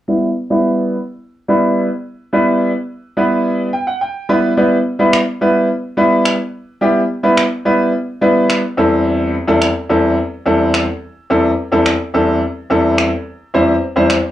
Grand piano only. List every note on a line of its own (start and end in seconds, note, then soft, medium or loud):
0.08 0.28 G3 medium
0.08 0.28 B3 medium
0.08 0.28 E4 medium
0.08 0.28 B4 medium
0.50 0.95 G3 medium
0.50 0.95 B3 medium
0.50 0.95 E4 medium
0.50 0.96 B4 medium
1.48 1.87 G3 medium
1.48 1.87 B3 medium
1.48 1.87 E4 medium
1.48 1.87 B4 medium
2.33 2.71 G3 medium
2.33 2.71 B3 medium
2.33 2.71 E4 medium
2.33 2.71 B4 medium
3.17 3.68 G3 medium
3.17 3.68 B3 medium
3.17 3.68 E4 medium
3.17 3.68 B4 medium
3.73 3.86 G5 medium
3.87 4.00 F#5 medium
4.01 4.27 G5 medium
4.29 4.51 G3 medium
4.29 4.51 B3 medium
4.29 4.52 E4 medium
4.29 4.52 B4 medium
4.29 4.55 B5 medium
4.57 4.76 G3 medium
4.57 4.76 B3 medium
4.57 4.76 E4 medium
4.57 4.76 B4 medium
4.99 5.18 G3 medium
4.99 5.18 B3 medium
4.99 5.18 E4 medium
4.99 5.18 B4 medium
5.41 5.67 G3 medium
5.41 5.67 B3 medium
5.41 5.67 E4 medium
5.41 5.67 B4 medium
5.97 6.36 G3 medium
5.97 6.36 B3 medium
5.97 6.36 E4 medium
5.97 6.36 B4 medium
6.81 7.00 G3 medium
6.81 7.01 B3 medium
6.81 7.01 E4 medium
6.81 7.01 G4 medium
7.23 7.43 G3 medium
7.23 7.43 B3 medium
7.23 7.43 E4 medium
7.23 7.43 B4 medium
7.65 7.91 G3 medium
7.65 7.91 B3 medium
7.65 7.91 E4 medium
7.65 7.91 B4 medium
8.21 8.60 G3 medium
8.21 8.60 B3 medium
8.21 8.60 E4 medium
8.21 8.60 B4 medium
8.77 9.34 E2 medium
8.77 9.34 G3 medium
8.77 9.34 C4 medium
8.77 9.34 E4 medium
8.77 9.34 A4 medium
9.47 9.67 E2 medium
9.47 9.67 G3 medium
9.47 9.67 C4 medium
9.47 9.67 E4 medium
9.47 9.67 A4 medium
9.89 10.15 E2 medium
9.89 10.15 G3 medium
9.89 10.15 C4 medium
9.89 10.15 E4 medium
9.89 10.16 A4 medium
10.46 10.84 E2 medium
10.46 10.84 G3 medium
10.46 10.84 C4 medium
10.46 10.84 E4 medium
10.46 10.84 A4 medium
11.30 11.49 E2 medium
11.30 11.49 G3 medium
11.30 11.49 C4 medium
11.30 11.49 E4 medium
11.30 11.49 A4 medium
11.72 11.91 E2 medium
11.72 11.91 G3 medium
11.72 11.91 C4 medium
11.72 11.91 E4 medium
11.72 11.91 A4 medium
12.14 12.40 E2 medium
12.14 12.40 G3 medium
12.14 12.40 C4 medium
12.14 12.40 E4 medium
12.14 12.40 A4 medium
12.70 13.08 E2 medium
12.70 13.09 G3 medium
12.70 13.09 C4 medium
12.70 13.09 E4 medium
12.70 13.09 A4 medium
13.54 13.73 E2 medium
13.54 13.73 G3 medium
13.54 13.73 C4 medium
13.54 13.74 E4 medium
13.54 13.74 C5 medium
13.96 14.15 E2 medium
13.96 14.15 G3 medium
13.96 14.16 C4 medium
13.96 14.16 E4 medium
13.96 14.16 C5 medium